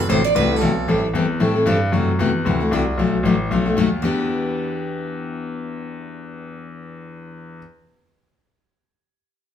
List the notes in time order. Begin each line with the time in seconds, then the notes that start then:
0.09 A1 C3 E3 A3 E4 F#4 C5
0.23 A1 D5
0.35 C2 C3 E3 A3 E4 F#4 B4
0.50 A3 E4 F#4
0.56 A4
0.61 B1 C3 E3 A3 E4 F#4
0.88 A1 E3 G3 C4 E4 A4
1.03 A1
1.14 E2 E3 G3 C4 E4 A4
1.40 A2 E3 G3 C4 E4 A4
1.55 C4 E4 A4
1.66 G2 E3 G3 C4 E4 A4
1.92 F#2 C3 E3 A3 E4 F#4
2.19 E2 C3 E3 A3 E4 F#4
2.45 D2 C3 E3 A3 E4 F#4
2.60 A3 E4 F#4
2.71 C2 C3 E3 A3 E4 F#4
2.98 B1 B2 F#3 A3 D#4 F#4
3.23 A1 B2 F#3 A3 D#4 F#4
3.51 B1 B2 F#3 A3 D#4 F#4
3.65 A3 D#4 F#4
3.76 D#2 B2 F#3 A3 D#4 F#4
4.02 E2 E3 B3 D4 G4